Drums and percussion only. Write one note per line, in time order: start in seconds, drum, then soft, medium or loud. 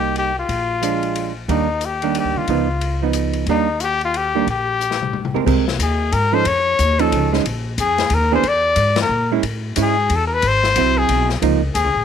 0.16 ride soft
0.49 kick soft
0.49 ride soft
0.83 hi-hat pedal soft
0.83 ride soft
1.03 ride soft
1.15 ride soft
1.48 kick soft
1.48 ride medium
1.81 hi-hat pedal soft
1.81 ride soft
2.02 ride soft
2.15 ride medium
2.48 kick soft
2.48 ride soft
2.81 ride medium
3.13 hi-hat pedal soft
3.13 ride medium
3.33 ride soft
3.46 kick soft
3.46 ride soft
3.80 hi-hat pedal soft
3.80 ride soft
4.01 ride soft
4.14 ride medium
4.47 kick soft
4.47 ride soft
4.81 hi-hat pedal medium
4.91 snare soft
5.02 mid tom soft
5.13 mid tom medium
5.25 mid tom medium
5.36 mid tom medium
5.47 kick medium
5.47 crash medium
5.68 snare medium
5.80 kick soft
5.80 hi-hat pedal medium
5.80 ride medium
6.12 kick soft
6.12 ride medium
6.45 kick soft
6.45 ride medium
6.79 kick soft
6.79 hi-hat pedal medium
6.79 ride medium
6.99 ride soft
7.12 kick soft
7.12 ride medium
7.33 snare soft
7.45 kick soft
7.45 ride medium
7.78 kick soft
7.78 hi-hat pedal soft
7.78 ride medium
7.98 snare medium
7.98 ride soft
8.10 kick soft
8.10 ride medium
8.43 kick soft
8.43 ride medium
8.76 kick soft
8.76 hi-hat pedal soft
8.76 ride medium
8.96 snare medium
8.96 ride medium
9.43 kick soft
9.43 ride medium
9.76 kick soft
9.76 hi-hat pedal medium
9.76 ride medium
10.10 kick soft
10.10 ride medium
10.42 kick soft
10.42 ride medium
10.64 snare soft
10.76 kick soft
10.76 hi-hat pedal soft
10.76 ride medium
11.09 kick soft
11.09 ride medium
11.29 snare soft
11.42 kick soft
11.42 ride medium
11.75 kick soft
11.75 hi-hat pedal soft
11.75 ride medium